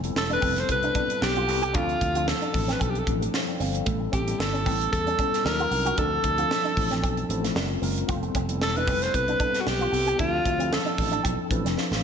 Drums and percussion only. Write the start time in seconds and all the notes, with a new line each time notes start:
0.04 closed hi-hat
0.16 snare
0.30 closed hi-hat
0.42 kick, open hi-hat
0.56 snare, closed hi-hat
0.69 kick, closed hi-hat
0.83 closed hi-hat
0.95 kick, closed hi-hat
1.10 closed hi-hat
1.22 snare
1.36 closed hi-hat
1.49 open hi-hat
1.63 closed hi-hat
1.74 kick, closed hi-hat
1.89 closed hi-hat
2.01 kick, closed hi-hat
2.15 closed hi-hat
2.28 snare
2.42 closed hi-hat
2.54 kick, open hi-hat
2.69 snare, closed hi-hat
2.81 kick, closed hi-hat
2.95 closed hi-hat
3.07 kick, closed hi-hat
3.22 closed hi-hat
3.34 snare
3.60 open hi-hat
3.75 closed hi-hat
3.86 kick, closed hi-hat
4.13 kick, closed hi-hat
4.28 closed hi-hat
4.40 snare
4.55 closed hi-hat
4.66 kick, open hi-hat
4.81 closed hi-hat
4.93 kick, closed hi-hat
5.07 closed hi-hat
5.19 kick, closed hi-hat
5.34 snare, closed hi-hat
5.46 snare
5.59 closed hi-hat
5.71 open hi-hat
5.87 closed hi-hat
5.98 kick, closed hi-hat
6.24 kick, closed hi-hat
6.38 closed hi-hat
6.51 snare
6.65 closed hi-hat
6.77 kick, open hi-hat
6.91 snare, closed hi-hat
7.04 kick, closed hi-hat
7.17 closed hi-hat
7.30 closed hi-hat
7.44 snare, closed hi-hat
7.56 snare
7.83 open hi-hat
7.98 closed hi-hat
8.09 kick, closed hi-hat
8.23 closed hi-hat
8.35 kick, closed hi-hat
8.49 closed hi-hat
8.61 snare
8.76 closed hi-hat
8.88 kick, open hi-hat
9.02 snare, closed hi-hat
9.14 kick, closed hi-hat
9.28 closed hi-hat
9.40 kick, closed hi-hat
9.54 snare, closed hi-hat
9.67 snare
9.80 closed hi-hat
9.94 open hi-hat
10.08 closed hi-hat
10.19 kick, closed hi-hat
10.45 kick, closed hi-hat
10.60 closed hi-hat
10.73 snare
10.87 closed hi-hat
10.98 kick, open hi-hat
11.13 closed hi-hat
11.25 kick, closed hi-hat
11.51 kick, closed hi-hat
11.66 snare, closed hi-hat
11.78 snare
11.92 snare